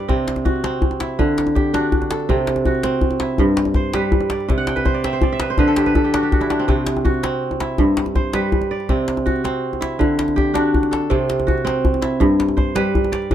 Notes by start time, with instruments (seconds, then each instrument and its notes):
Already playing: kora G2 G3 E4 B4 C5 D5
0.08 kora C3 C4, djembe slap, djembe bass
0.28 djembe slap
0.36 djembe slap, djembe tone
0.45 kora F#4, djembe bass
0.56 djembe slap
0.64 kora C4, djembe slap
0.82 djembe bass
0.91 djembe tone
1.00 kora E4, djembe slap
1.19 kora D3, djembe bass
1.38 djembe slap
1.47 djembe tone
1.55 kora G4, djembe slap, djembe bass
1.74 kora D4 F#4, djembe slap
1.92 djembe bass
2.02 djembe slap, djembe tone
2.11 kora A4, djembe slap
2.20 djembe slap
2.29 kora C3 C4, djembe slap, djembe bass
2.47 djembe slap
2.56 djembe slap, djembe tone
2.65 kora F#4, djembe bass
2.75 djembe slap
2.83 kora C4, djembe slap
3.01 djembe bass
3.10 djembe tone
3.20 kora E4, djembe slap
3.38 kora G2, djembe bass
3.57 djembe slap
3.65 djembe tone
3.74 kora C5, djembe slap, djembe bass
3.94 kora G3 B4, djembe slap
4.12 djembe bass
4.21 djembe slap, djembe tone
4.30 kora D5, djembe slap
4.40 djembe slap
4.49 kora C3, djembe slap, djembe bass
4.58 kora F#5
4.67 kora G5, djembe slap
4.76 kora B4, djembe tone
4.85 kora C5, djembe slap, djembe bass
4.94 kora D5
5.04 kora C4 E5, djembe slap
5.13 kora C5
5.21 kora D5, djembe bass
5.32 kora E5
5.40 kora B4, djembe slap
5.49 kora C5, djembe slap
5.58 kora D3 B4, djembe slap, djembe bass
5.67 kora A4, djembe slap
5.76 kora G4, djembe slap
5.86 kora B4, djembe tone
5.95 kora A4, djembe bass
6.04 kora G4, djembe slap
6.14 kora D4 F#4, djembe slap
6.23 kora G4
6.32 kora F#4, djembe slap, djembe bass
6.41 kora E4, djembe tone
6.50 kora D4, djembe slap
6.59 kora C4
6.68 kora C3 C4, djembe slap, djembe bass
6.87 djembe slap
6.96 djembe slap, djembe tone
7.05 kora F#4, djembe bass
7.14 djembe slap
7.23 kora C4, djembe slap
7.51 djembe tone
7.60 kora E4, djembe slap
7.78 kora G2, djembe bass
7.97 djembe slap
8.06 djembe tone
8.15 kora C5, djembe slap, djembe bass
8.33 kora G3 B4, djembe slap
8.52 djembe bass
8.61 djembe slap, djembe tone
8.71 kora D5
8.80 djembe slap
8.89 kora C3 C4, djembe slap, djembe bass
9.08 djembe slap
9.17 djembe slap, djembe tone
9.26 kora F#4, djembe bass
9.36 djembe slap
9.44 kora C4, djembe slap
9.73 djembe tone
9.81 kora E4, djembe slap
9.99 kora D3, djembe bass
10.19 djembe slap
10.28 djembe tone
10.36 kora G4, djembe slap, djembe bass
10.54 kora D4 F#4, djembe slap
10.74 djembe bass
10.83 djembe slap, djembe tone
10.91 kora A4, djembe slap
11.02 djembe slap
11.10 kora C3 C4, djembe slap, djembe bass
11.30 djembe slap
11.40 djembe slap, djembe tone
11.47 kora F#4, djembe bass
11.57 djembe slap
11.65 kora C4, djembe slap
11.85 djembe bass
11.94 djembe tone
12.02 kora E4, djembe slap
12.20 kora G2, djembe bass
12.40 djembe slap
12.48 djembe tone
12.57 kora C5, djembe slap, djembe bass
12.75 kora G3 B4, djembe slap
12.95 djembe bass
13.04 djembe slap, djembe tone
13.12 kora D5, djembe slap
13.22 djembe slap
13.31 kora C3, djembe bass